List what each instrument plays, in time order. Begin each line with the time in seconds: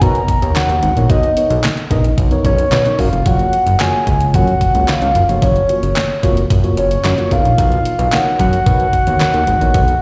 0.01 analog synth bass B2, fm electric piano B3 D#4 A#4 C#5, soft synth lead A#5, kick, closed hi-hat
0.15 closed hi-hat
0.28 kick, closed hi-hat
0.42 analog synth bass D#2, fm electric piano B3 D#4 A#4 C#5, closed hi-hat
0.56 soft synth lead F#5, snare, clap, closed hi-hat
0.69 analog synth bass D#2, closed hi-hat
0.83 analog synth bass G#1, closed hi-hat
0.96 analog synth bass A#1, fm electric piano B3 D#4 A#4 C#5, closed hi-hat
1.10 analog synth bass B1, soft synth lead D#5, kick, closed hi-hat
1.23 closed hi-hat
1.37 fm electric piano B3 D#4 A#4 C#5, closed hi-hat
1.50 analog synth bass B1, closed hi-hat
1.64 snare, clap, closed hi-hat
1.77 closed hi-hat
1.91 analog synth bass A#1, fm electric piano B3 D#4 A#4 D#5, kick, closed hi-hat
2.04 closed hi-hat
2.18 analog synth bass B1, kick, closed hi-hat
2.31 fm electric piano B3 D#4 A#4 C#5, closed hi-hat
2.44 analog synth bass B1, soft synth lead C#5, kick, closed hi-hat
2.58 closed hi-hat
2.72 analog synth bass B2, snare, clap, closed hi-hat
2.85 fm electric piano B3 D#4 A#4 C#5, closed hi-hat
2.99 analog synth bass F#2, soft synth lead F5, kick, open hi-hat
3.12 analog synth bass F1, closed hi-hat
3.26 analog synth bass F#1, fm electric piano A#3 F4 F#4 C#5, soft synth lead F#5, kick, closed hi-hat
3.39 closed hi-hat
3.53 closed hi-hat
3.66 analog synth bass F#1, closed hi-hat
3.80 fm electric piano A#3 F4 F#4 C#5, soft synth lead G#5, snare, clap, closed hi-hat
4.07 analog synth bass C#2, kick, closed hi-hat
4.21 closed hi-hat
4.34 analog synth bass F#2, fm electric piano A#3 F4 F#4 C#5, soft synth lead F#5, kick, closed hi-hat
4.48 closed hi-hat
4.61 kick, closed hi-hat
4.74 analog synth bass C#2, fm electric piano A#3 F4 F#4 C#5, closed hi-hat
4.88 soft synth lead F5, snare, clap, closed hi-hat
5.02 analog synth bass C#2, closed hi-hat
5.15 analog synth bass F#1, closed hi-hat
5.28 analog synth bass F1, fm electric piano A#3 F4 F#4 C#5, closed hi-hat
5.42 analog synth bass F#1, soft synth lead C#5, kick, closed hi-hat
5.56 closed hi-hat
5.69 fm electric piano A#3 F4 F#4 C#5, closed hi-hat
5.83 analog synth bass F#1, closed hi-hat
5.96 snare, clap, closed hi-hat
6.23 analog synth bass F1, fm electric piano A#3 F4 F#4 C#5, kick, closed hi-hat
6.37 closed hi-hat
6.50 analog synth bass F#1, kick, closed hi-hat
6.64 fm electric piano A#3 F4 F#4 C#5, closed hi-hat
6.77 analog synth bass F#1, soft synth lead C#5, closed hi-hat
6.91 closed hi-hat
7.04 analog synth bass F#2, snare, clap, closed hi-hat
7.18 fm electric piano A#3 F4 F#4 C#5, closed hi-hat
7.31 analog synth bass B1, fm electric piano B3 D#4 A#4 C#5, soft synth lead F5, kick, closed hi-hat
7.44 analog synth bass A#1, closed hi-hat
7.58 analog synth bass B1, kick, closed hi-hat
7.72 closed hi-hat
7.85 closed hi-hat
7.99 analog synth bass B1, closed hi-hat
8.12 fm electric piano B3 D#4 A#4 C#5, soft synth lead F#5, snare, clap, closed hi-hat
8.39 analog synth bass F#2, soft synth lead F#5, kick, closed hi-hat
8.53 closed hi-hat
8.66 analog synth bass B2, fm electric piano B3 D#4 A#4 C#5, kick, closed hi-hat
8.80 closed hi-hat
8.93 kick, closed hi-hat
9.07 analog synth bass D#2, fm electric piano B3 D#4 A#4 C#5, closed hi-hat
9.20 snare, clap, closed hi-hat
9.34 analog synth bass D#2, closed hi-hat
9.47 analog synth bass G#1, closed hi-hat
9.61 analog synth bass A#1, fm electric piano B3 D#4 A#4 C#5, closed hi-hat
9.74 analog synth bass B1, kick, closed hi-hat
9.88 closed hi-hat